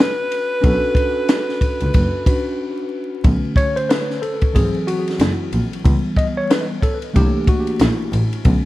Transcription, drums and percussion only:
0.00 snare loud
0.32 ride medium
0.64 kick loud
0.64 ride medium
0.95 kick medium
0.95 ride medium
1.29 snare loud
1.29 hi-hat pedal medium
1.29 ride medium
1.49 snare soft
1.61 kick medium
1.61 ride medium
1.80 ride soft
1.94 kick loud
1.94 ride medium
2.26 kick medium
2.26 ride medium
3.24 kick loud
3.24 ride medium
3.56 kick medium
3.56 ride medium
3.77 ride soft
3.90 snare loud
3.90 hi-hat pedal soft
3.90 ride medium
4.10 snare soft
4.23 ride medium
4.41 kick medium
4.41 ride soft
4.56 kick medium
4.56 ride medium
4.88 ride medium
5.08 snare soft
5.08 ride soft
5.19 snare loud
5.19 hi-hat pedal soft
5.19 ride medium
5.52 ride medium
5.73 ride soft
5.85 kick loud
5.85 ride medium
6.16 kick medium
6.16 ride medium
6.51 snare loud
6.51 hi-hat pedal soft
6.51 ride medium
6.82 kick medium
6.82 ride medium
7.02 ride soft
7.16 kick medium
7.16 ride medium
7.47 kick medium
7.47 ride medium
7.67 ride soft
7.79 snare loud
7.79 hi-hat pedal medium
7.79 ride medium
8.13 ride medium
8.33 ride soft
8.45 kick loud
8.45 ride medium

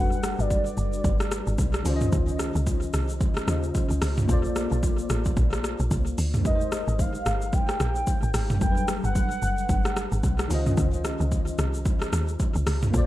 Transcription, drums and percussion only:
0.12 shaker soft
0.23 cross-stick loud
0.23 shaker medium
0.40 shaker medium
0.50 kick loud
0.50 shaker medium
0.66 shaker medium
0.77 shaker medium
0.93 shaker medium
1.04 kick loud
1.04 shaker medium
1.20 cross-stick medium
1.20 shaker medium
1.32 cross-stick loud
1.32 shaker loud
1.47 shaker medium
1.58 kick loud
1.58 shaker medium
1.74 cross-stick medium
1.74 shaker medium
1.85 open hi-hat medium
1.85 shaker loud
2.01 mid tom loud
2.01 shaker medium
2.12 kick loud
2.12 shaker medium
2.28 shaker soft
2.39 cross-stick medium
2.39 shaker medium
2.56 shaker medium
2.67 kick loud
2.67 shaker medium
2.82 shaker medium
2.93 cross-stick medium
2.93 shaker medium
3.09 shaker medium
3.21 kick loud
3.21 shaker medium
3.37 cross-stick loud
3.37 shaker medium
3.48 cross-stick loud
3.48 shaker loud
3.63 shaker medium
3.75 kick loud
3.75 shaker medium
3.90 shaker medium
4.02 cross-stick loud
4.02 open hi-hat medium
4.02 shaker loud
4.17 mid tom loud
4.17 shaker medium
4.29 kick loud
4.29 shaker medium
4.45 shaker soft
4.56 cross-stick loud
4.56 shaker loud
4.72 shaker medium
4.83 kick loud
4.83 shaker medium
4.99 shaker medium
5.10 cross-stick loud
5.10 shaker medium
5.25 kick loud
5.25 shaker medium
5.37 kick loud
5.37 shaker medium
5.53 cross-stick loud
5.53 shaker medium
5.64 cross-stick medium
5.64 shaker loud
5.80 shaker medium
5.91 kick loud
5.91 shaker medium
6.07 shaker medium
6.18 open hi-hat medium
6.18 shaker loud
6.34 mid tom loud
6.34 shaker medium
6.45 kick loud
6.45 shaker medium
6.61 shaker soft
6.72 cross-stick loud
6.72 shaker medium
6.88 shaker medium
6.99 kick loud
6.99 shaker medium
7.15 shaker medium
7.26 cross-stick loud
7.26 shaker medium
7.42 shaker medium
7.53 kick loud
7.53 shaker medium
7.69 cross-stick loud
7.69 shaker medium
7.80 cross-stick loud
7.80 shaker loud
7.95 shaker medium
8.07 kick loud
8.07 shaker medium
8.23 shaker medium
8.34 cross-stick loud
8.34 open hi-hat medium
8.34 shaker loud
8.50 mid tom loud
8.50 shaker medium
8.61 kick loud
8.61 shaker medium
8.77 shaker soft
8.88 cross-stick loud
8.88 shaker medium
9.04 shaker medium
9.15 kick loud
9.15 shaker medium
9.31 shaker medium
9.42 shaker medium
9.58 shaker medium
9.69 kick loud
9.69 shaker medium
9.85 cross-stick loud
9.85 shaker medium
9.97 cross-stick loud
9.97 shaker loud
10.12 shaker medium
10.23 kick loud
10.23 shaker medium
10.39 cross-stick loud
10.39 shaker medium
10.51 open hi-hat medium
10.51 shaker loud
10.66 mid tom loud
10.66 shaker medium
10.77 kick loud
10.77 shaker medium
10.93 shaker soft
11.05 cross-stick medium
11.05 shaker medium
11.21 shaker medium
11.32 kick loud
11.32 shaker medium
11.47 shaker medium
11.59 cross-stick loud
11.59 shaker medium
11.74 shaker medium
11.85 kick loud
11.85 shaker medium
12.02 cross-stick loud
12.02 shaker medium
12.13 cross-stick loud
12.13 shaker loud
12.28 shaker medium
12.40 kick loud
12.40 shaker medium
12.55 shaker medium
12.67 cross-stick loud
12.67 open hi-hat medium
12.67 shaker loud
12.82 mid tom loud
12.82 shaker medium
12.94 kick loud
12.94 shaker medium

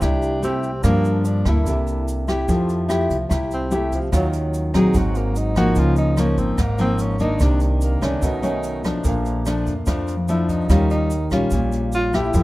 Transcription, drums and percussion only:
0.01 kick medium
0.01 cross-stick medium
0.01 closed hi-hat soft
0.01 shaker medium
0.22 closed hi-hat soft
0.22 shaker soft
0.43 closed hi-hat soft
0.43 shaker medium
0.63 closed hi-hat soft
0.63 shaker soft
0.83 kick soft
0.83 cross-stick medium
0.83 closed hi-hat soft
0.83 shaker medium
1.04 closed hi-hat soft
1.04 shaker soft
1.24 closed hi-hat soft
1.24 shaker medium
1.45 kick medium
1.45 cross-stick medium
1.45 closed hi-hat soft
1.45 shaker soft
1.66 kick medium
1.66 closed hi-hat soft
1.66 shaker medium
1.87 closed hi-hat soft
1.87 shaker soft
2.08 closed hi-hat soft
2.08 shaker medium
2.28 cross-stick medium
2.28 closed hi-hat soft
2.28 shaker soft
2.48 kick medium
2.48 closed hi-hat soft
2.48 shaker medium
2.69 closed hi-hat soft
2.69 shaker soft
2.90 cross-stick medium
2.90 closed hi-hat soft
2.90 shaker medium
3.10 kick soft
3.10 closed hi-hat soft
3.10 shaker soft
3.31 kick medium
3.31 cross-stick medium
3.31 closed hi-hat medium
3.31 shaker medium
3.51 closed hi-hat soft
3.51 shaker soft
3.71 closed hi-hat soft
3.71 shaker medium
3.92 kick soft
3.92 closed hi-hat soft
3.92 shaker soft
4.12 kick soft
4.12 cross-stick medium
4.12 closed hi-hat medium
4.12 shaker medium
4.33 closed hi-hat soft
4.33 shaker soft
4.54 closed hi-hat soft
4.54 shaker medium
4.74 kick soft
4.74 cross-stick medium
4.74 closed hi-hat soft
4.74 shaker soft
4.94 kick medium
4.94 closed hi-hat medium
4.94 shaker medium
5.15 closed hi-hat soft
5.15 shaker soft
5.36 closed hi-hat soft
5.36 shaker medium
5.56 kick soft
5.56 cross-stick medium
5.56 closed hi-hat soft
5.56 shaker soft
5.75 kick soft
5.75 closed hi-hat soft
5.75 shaker medium
5.96 closed hi-hat soft
5.96 shaker soft
6.17 cross-stick medium
6.17 closed hi-hat soft
6.17 shaker medium
6.37 kick soft
6.37 closed hi-hat soft
6.37 shaker soft
6.58 kick medium
6.58 cross-stick medium
6.58 closed hi-hat medium
6.58 shaker medium
6.78 closed hi-hat soft
6.78 shaker soft
6.98 closed hi-hat soft
6.98 shaker medium
7.19 kick soft
7.19 closed hi-hat soft
7.19 shaker soft
7.39 kick medium
7.39 cross-stick medium
7.39 closed hi-hat medium
7.39 shaker medium
7.60 closed hi-hat soft
7.60 shaker soft
7.81 closed hi-hat soft
7.81 shaker medium
8.02 kick soft
8.02 cross-stick medium
8.02 closed hi-hat medium
8.02 shaker soft
8.22 kick medium
8.22 closed hi-hat medium
8.22 shaker medium
8.43 closed hi-hat soft
8.43 shaker soft
8.63 closed hi-hat soft
8.63 shaker medium
8.84 kick soft
8.84 cross-stick medium
8.84 closed hi-hat soft
8.84 shaker soft
9.04 kick medium
9.04 closed hi-hat soft
9.04 shaker medium
9.25 closed hi-hat soft
9.25 shaker soft
9.46 cross-stick medium
9.46 closed hi-hat soft
9.46 shaker medium
9.66 kick soft
9.66 closed hi-hat soft
9.66 shaker soft
9.86 kick medium
9.86 cross-stick medium
9.86 closed hi-hat soft
9.86 shaker medium
10.08 closed hi-hat soft
10.08 shaker soft
10.28 closed hi-hat soft
10.28 shaker medium
10.49 kick soft
10.49 closed hi-hat soft
10.49 shaker soft
10.69 kick medium
10.69 cross-stick medium
10.69 closed hi-hat medium
10.69 shaker medium
10.90 closed hi-hat soft
10.90 shaker soft
11.10 closed hi-hat soft
11.10 shaker medium
11.31 kick soft
11.31 cross-stick medium
11.31 closed hi-hat soft
11.31 shaker soft
11.51 kick medium
11.51 closed hi-hat medium
11.51 shaker medium
11.72 closed hi-hat soft
11.72 shaker soft
11.92 closed hi-hat soft
11.92 shaker medium
12.13 kick soft
12.13 cross-stick medium
12.13 closed hi-hat soft
12.13 shaker soft
12.34 kick medium
12.34 closed hi-hat medium
12.34 shaker medium

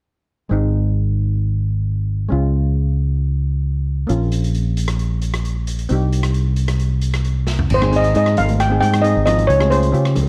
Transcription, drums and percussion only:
4.09 closed hi-hat soft
4.32 closed hi-hat medium
4.44 closed hi-hat medium
4.55 closed hi-hat soft
4.77 closed hi-hat medium
4.88 cross-stick medium
4.88 closed hi-hat medium
4.99 closed hi-hat medium
5.21 closed hi-hat medium
5.34 cross-stick medium
5.34 closed hi-hat medium
5.45 closed hi-hat medium
5.67 closed hi-hat medium
5.79 closed hi-hat medium
5.89 closed hi-hat medium
6.12 closed hi-hat medium
6.23 cross-stick medium
6.23 closed hi-hat medium
6.34 closed hi-hat medium
6.56 closed hi-hat medium
6.68 cross-stick medium
6.68 closed hi-hat medium
6.79 closed hi-hat medium
7.01 closed hi-hat medium
7.14 cross-stick medium
7.14 closed hi-hat soft
7.24 closed hi-hat soft
7.47 snare soft
7.59 floor tom medium
7.70 crash medium
7.82 cross-stick medium
7.82 high conga medium
7.92 closed hi-hat medium
8.04 closed hi-hat medium
8.15 closed hi-hat medium
8.26 cross-stick medium
8.37 closed hi-hat medium
8.37 low conga medium
8.49 closed hi-hat medium
8.49 high conga medium
8.60 cross-stick medium
8.60 closed hi-hat medium
8.82 closed hi-hat medium
8.93 cross-stick medium
8.93 closed hi-hat medium
8.93 high conga medium
9.04 closed hi-hat medium
9.26 cross-stick medium
9.26 closed hi-hat medium
9.26 low conga medium
9.39 closed hi-hat medium
9.50 closed hi-hat medium
9.60 cross-stick medium
9.60 high conga medium
9.72 closed hi-hat medium
9.83 closed hi-hat medium
9.94 closed hi-hat soft
10.05 cross-stick medium
10.16 closed hi-hat medium
10.16 low conga medium

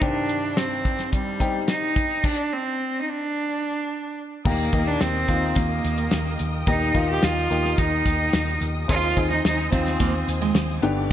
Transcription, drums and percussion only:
0.02 kick loud
0.02 closed hi-hat medium
0.29 closed hi-hat medium
0.57 snare medium
0.57 closed hi-hat medium
0.85 kick medium
0.85 closed hi-hat soft
0.99 snare soft
0.99 closed hi-hat soft
1.12 kick medium
1.12 closed hi-hat medium
1.40 kick medium
1.40 closed hi-hat medium
1.68 snare loud
1.68 closed hi-hat medium
1.96 kick medium
1.96 closed hi-hat medium
2.24 kick medium
2.24 crash medium
4.45 kick loud
4.45 crash medium
4.73 kick medium
4.73 closed hi-hat medium
5.01 snare loud
5.01 closed hi-hat medium
5.28 kick medium
5.28 closed hi-hat medium
5.55 kick medium
5.55 closed hi-hat medium
5.84 closed hi-hat medium
5.98 closed hi-hat soft
6.11 snare medium
6.11 closed hi-hat medium
6.39 closed hi-hat medium
6.67 kick loud
6.67 closed hi-hat medium
6.95 kick medium
6.95 closed hi-hat medium
7.23 snare loud
7.23 closed hi-hat medium
7.50 closed hi-hat medium
7.65 snare soft
7.78 kick medium
7.78 closed hi-hat medium
8.06 kick medium
8.06 closed hi-hat medium
8.33 snare loud
8.33 closed hi-hat medium
8.62 closed hi-hat medium
8.89 kick loud
8.89 closed hi-hat medium
9.17 kick medium
9.17 closed hi-hat medium
9.45 snare loud
9.45 closed hi-hat medium
9.73 kick medium
9.73 closed hi-hat medium
9.86 snare soft
9.86 closed hi-hat soft
10.00 kick medium
10.00 closed hi-hat medium
10.29 closed hi-hat medium
10.42 closed hi-hat soft
10.55 snare loud
10.55 closed hi-hat medium
10.83 closed hi-hat medium

